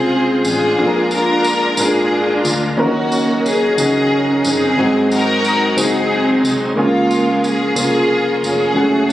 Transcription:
Already playing: C2 C#3 G#3 C4 F4 G#4 C5
0.45 A1 D4 F4 G#4, tambourine
0.77 A#1 A#2 G#3 D4 F4 G#4 A4 A#4
0.87 A#4
1.11 D4 F4 A#4, tambourine
1.44 tambourine
1.77 G#1 D4 F4 G#4 A#4, tambourine
2.45 D2, tambourine
2.77 D#2 C#3 D#3 F#3 A#3 C#4 D#4 F4 A#4
2.81 F#4
2.86 F#4
3.12 tambourine
3.46 G#4, tambourine
3.77 C#2 C#4 D#4 F#4 G#4, tambourine
3.81 G#4
4.45 G1 C4 D#4 G#4, tambourine
4.77 G#1 G#2 F#3 C4 D#4 F#4 G#4
5.11 D#4 F#4 A#4, tambourine
5.44 tambourine
5.76 F#1 C4 D#4 F#4 G#4, tambourine
5.80 G#4
6.43 C2, tambourine
6.75 C#2 C#3 F3 G#3 A#3 C#4 F4 G#4
7.11 tambourine
7.44 G#4, tambourine
7.74 C2 A#3 C#4 F4 G#4, tambourine
7.79 G#4
8.43 F1 C#4 G#4, tambourine
8.74 F#1 F#3 G#3 A3 C#4 F#4 G#5
8.81 A3

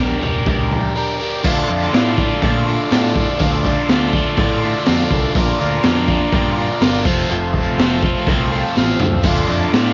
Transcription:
Already playing: A#1 G3 D4 G4 A#4 D5
0.00 G4 A#4
0.22 F1 D4 G4 A#4, floor tom
0.46 C#2 G3 D4 G4 A#4, kick, floor tom
0.71 floor tom
0.95 G3 D4 G4 A#4
1.19 D4 G4 A#4
1.43 D2 D3 A3 D4 F4 A4 D5, kick, crash
1.68 F2 A3 D4 F4
1.92 A2 D3 A3 D4 F4, snare, open hi-hat
2.17 A3 D4 F4, kick
2.42 A#2 D3 A3 D4 F4, kick, open hi-hat
2.67 A3 D4 F4
2.90 A2 D3 A3 D4 F4, snare, open hi-hat
3.15 kick
3.38 D2 D3 A3 D4 F4, kick, open hi-hat
3.63 A3 D4 F4, kick
3.88 D2 D3 A3 D4 F4, snare, open hi-hat
4.13 A3 D4 F4, kick
4.37 A2 D3 A3 D4 F4, kick, open hi-hat
4.61 A3 D4 F4
4.86 F2 D3 A3 D4 F4, snare, open hi-hat
5.10 C2, kick
5.35 A#1 A#2 D3 A#3 D4 F4 A#4, kick, open hi-hat
5.40 D5
5.59 D2 A#3 D4 F4
5.83 F2 D3 A#3 D4 F4, snare, open hi-hat
6.07 A#3 D4 F4, kick
6.32 G2 A#2 D3 A#3 D4 F4, kick, open hi-hat
6.57 A#3 D4 F4
6.81 G1 D3 A#3 D4 F4, snare, open hi-hat
7.02 F1 F4 A4, kick, crash
7.06 F2 C3 F3 A3 C4 C5
7.29 F1 F2 C3 F3 A3 C4 F4
7.54 A3 C4 F4, kick
7.58 F3
7.78 F1 F3 A3 C4 F4, snare, open hi-hat
8.03 F3 A3 C4 F4, kick
8.27 C2 F2 C3 F3 A3 C4 F4, kick, open hi-hat
8.52 F3 A3 C4 F4 C6
8.65 A5
8.76 A1 F3 A3 C4 F4 F5, snare
9.00 D2 E5, mid tom
9.12 floor tom
9.23 D2 D3 A3 D4 F4 A4, kick, open hi-hat, crash
9.29 D5
9.47 F2 A3 D4 F4
9.72 A2 D3 A3 D4 F4, snare, open hi-hat

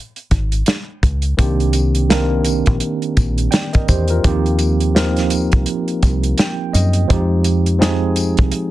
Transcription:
0.16 closed hi-hat
0.31 G#1, kick, closed hi-hat
0.52 closed hi-hat
0.66 snare, closed hi-hat
1.03 C#2, kick, closed hi-hat
1.22 closed hi-hat
1.37 C2 D#3 A#3 C4 D4 G4, kick, closed hi-hat
1.60 closed hi-hat
1.73 closed hi-hat, tambourine
1.95 closed hi-hat
2.09 D#3 A#3 C4 D4 A#4, snare, closed hi-hat
2.45 closed hi-hat, tambourine
2.66 A#1, kick, closed hi-hat
2.80 closed hi-hat
3.02 closed hi-hat
3.17 A#1, kick, closed hi-hat, tambourine
3.38 closed hi-hat
3.51 D5 G5, snare, closed hi-hat
3.73 A#4 D#5, kick, closed hi-hat
3.88 E2 G4 C5, kick, closed hi-hat, tambourine
4.08 F4 A#4, closed hi-hat
4.23 D#2 F3 A#3 C4 D#4 G4, kick, closed hi-hat
4.46 closed hi-hat
4.59 closed hi-hat, tambourine
4.80 closed hi-hat
4.94 F3 A#3 C4 D#4 A#4, snare, closed hi-hat
5.17 snare, closed hi-hat
5.30 closed hi-hat, tambourine
5.52 C2, kick, closed hi-hat
5.66 closed hi-hat
5.88 closed hi-hat
6.03 C2, kick, closed hi-hat, tambourine
6.23 closed hi-hat
6.38 G5, snare, closed hi-hat
6.73 F#2 D#5, closed hi-hat, tambourine
6.93 closed hi-hat
7.08 F2 F3 G#3 C4 D#4 G4, kick, closed hi-hat
7.44 closed hi-hat, tambourine
7.66 closed hi-hat
7.79 F3 G#3 C4 D#4 G#4, snare, closed hi-hat
8.16 closed hi-hat, tambourine
8.37 C2, kick, closed hi-hat
8.52 closed hi-hat

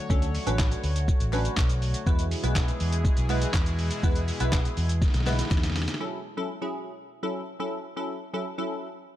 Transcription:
Already playing: D3 F#3 A3 F#4 C#5
0.10 D2 F#3 C#4 D4 A4, kick, shaker
0.22 closed hi-hat, shaker
0.35 open hi-hat, shaker
0.47 A1 F#3 C#4 D4 B4, closed hi-hat, shaker
0.58 kick, snare, clap, shaker
0.72 closed hi-hat, shaker
0.84 D2, open hi-hat, shaker
0.96 closed hi-hat, shaker
1.08 kick, shaker
1.20 A1, closed hi-hat, shaker
1.33 F#3 C#4 D4 B4, clap, open hi-hat, shaker
1.45 closed hi-hat, shaker
1.56 B1, kick, snare, clap, shaker
1.69 closed hi-hat, shaker
1.82 open hi-hat, shaker
1.94 closed hi-hat, shaker
2.06 E2 B2 E3 G#3 B3 E4 G#4 B4, kick, shaker
2.19 closed hi-hat, shaker
2.31 open hi-hat, shaker
2.43 B1 G#3 B3 E4 B4, closed hi-hat, shaker
2.55 kick, snare, clap, shaker
2.68 closed hi-hat, shaker
2.80 E2, open hi-hat, shaker
2.92 closed hi-hat, shaker
3.05 kick, shaker
3.17 B1, closed hi-hat, shaker
3.29 G#3 B3 E4 B4, clap, open hi-hat, shaker
3.42 closed hi-hat, shaker
3.53 E2, kick, snare, clap, shaker
3.66 closed hi-hat, shaker
3.79 open hi-hat, shaker
3.91 closed hi-hat, shaker
4.03 E2 G#3 B3 E4 B4, kick, shaker
4.15 closed hi-hat, shaker
4.28 open hi-hat, shaker
4.40 B1 G#3 B3 E4 B4, closed hi-hat, shaker
4.52 kick, snare, clap, shaker
4.65 closed hi-hat, shaker
4.77 E2, open hi-hat, shaker
4.89 closed hi-hat, shaker
5.02 kick, snare, shaker
5.08 snare
5.14 B1, snare, closed hi-hat, shaker
5.20 snare
5.26 G#3 B3 E4 B4, snare, clap, open hi-hat, shaker
5.33 snare
5.39 snare, closed hi-hat, shaker
5.45 snare
5.51 E2, kick, snare, clap, shaker
5.57 snare
5.63 snare, closed hi-hat, shaker
5.70 snare
5.76 snare, open hi-hat, shaker
5.82 snare
5.88 snare, closed hi-hat, shaker
5.94 snare
6.00 F#3 C#4 E4 A4
6.37 F#3 C#4 E4 A4
6.62 F#3 C#4 E4 G#4
7.23 F#3 C#4 E4 A4
7.60 F#3 C#4 E4 A4
7.96 F#3 C#4 E4 A4
8.33 F#3 C#4 E4 A4
8.58 F#3 C#4 E4 A4

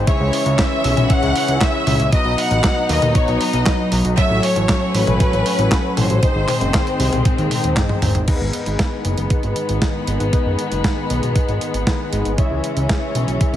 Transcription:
Already playing: G#3
0.07 C#3 E3 C#4 E4 G#4 C#5 E5, kick, closed hi-hat
0.21 C#2
0.33 open hi-hat
0.46 C#2, closed hi-hat
0.58 E5, kick, snare, clap, closed hi-hat
0.84 B1, open hi-hat
0.97 B1, closed hi-hat, high tom
1.10 F#5, kick, closed hi-hat
1.23 C#2, closed hi-hat
1.36 open hi-hat
1.48 C#2, closed hi-hat
1.61 E5, kick, snare, clap, closed hi-hat
1.87 C#2 E4 G#4 C#5 E5, open hi-hat, high tom
2.00 C#2, closed hi-hat
2.12 B2 F#3 B3 D#4 F#4 B4 D#5, kick, closed hi-hat
2.25 B1
2.38 F#5, open hi-hat
2.51 A1, closed hi-hat
2.64 kick, snare, clap, closed hi-hat
2.89 D#2 D#5, open hi-hat
3.02 D#2, closed hi-hat, high tom
3.15 C#5, kick, closed hi-hat
3.28 B1, closed hi-hat
3.41 D#5, open hi-hat
3.53 B1, closed hi-hat
3.66 kick, snare, clap, closed hi-hat
3.92 B1 D#4 F#4 B4 D#5, open hi-hat
4.05 B1, closed hi-hat
4.17 A2 A3 C#4 F#4 A4 C#5 E5, kick, closed hi-hat
4.30 A1
4.43 C#5, open hi-hat
4.56 A1, closed hi-hat
4.69 kick, snare, clap, closed hi-hat
4.95 A1 B4, open hi-hat
5.07 A1, closed hi-hat, high tom
5.20 kick, closed hi-hat
5.33 A1, closed hi-hat
5.46 open hi-hat
5.59 A1, closed hi-hat
5.72 kick, snare, clap, closed hi-hat
5.97 A1 C#4 F#4 A4 C5 C#5, open hi-hat, high tom
6.10 A1, closed hi-hat
6.23 G#2 D#3 G#3 C4 D#4 G#4 C5, kick, closed hi-hat
6.36 G#1
6.48 clap, open hi-hat, high tom
6.61 F#1, closed hi-hat
6.74 kick, snare, clap, closed hi-hat
6.87 closed hi-hat
7.00 C2, open hi-hat
7.13 C2, closed hi-hat, high tom
7.25 kick, closed hi-hat
7.38 D#2, closed hi-hat
7.51 open hi-hat, high tom
7.64 D#2, closed hi-hat
7.77 kick, snare, clap, closed hi-hat, mid tom
7.89 mid tom
8.02 G#1 C4 D#4 G#4 C5, mid tom, open hi-hat
8.15 G#1, closed hi-hat, mid tom
8.28 G#2 D#3 G#3 B3 D#4 G#4 B4, kick, closed hi-hat, crash
8.41 G#1
8.53 closed hi-hat
8.66 G#1, closed hi-hat
8.79 kick, snare, closed hi-hat
9.05 F#1, closed hi-hat
9.18 F#1, closed hi-hat
9.30 kick, closed hi-hat
9.43 G#1, closed hi-hat
9.56 closed hi-hat
9.69 G#1, closed hi-hat
9.82 kick, snare, closed hi-hat
10.07 G#1 G#2 B3 D#4 G#4 B4, closed hi-hat
10.20 G#1, closed hi-hat
10.33 G#2 B3 D#4 G#4 B4, kick, closed hi-hat
10.46 F#1
10.59 closed hi-hat
10.72 F#1, closed hi-hat
10.84 kick, snare, closed hi-hat
11.10 B1, closed hi-hat
11.23 B1, closed hi-hat
11.36 kick, closed hi-hat
11.48 G#1, closed hi-hat
11.61 closed hi-hat
11.74 G#1, closed hi-hat
11.87 kick, snare, closed hi-hat
12.12 G#1 B3 D#4 G#4 B4, closed hi-hat
12.25 G#1, closed hi-hat
12.38 C#3 E3 C#4 E4 G#4 C#5 E5, kick, closed hi-hat
12.51 C#2
12.64 closed hi-hat
12.77 C#2, closed hi-hat
12.89 kick, snare, closed hi-hat
13.15 B1, closed hi-hat
13.28 B1, closed hi-hat
13.41 kick, closed hi-hat
13.53 C#2

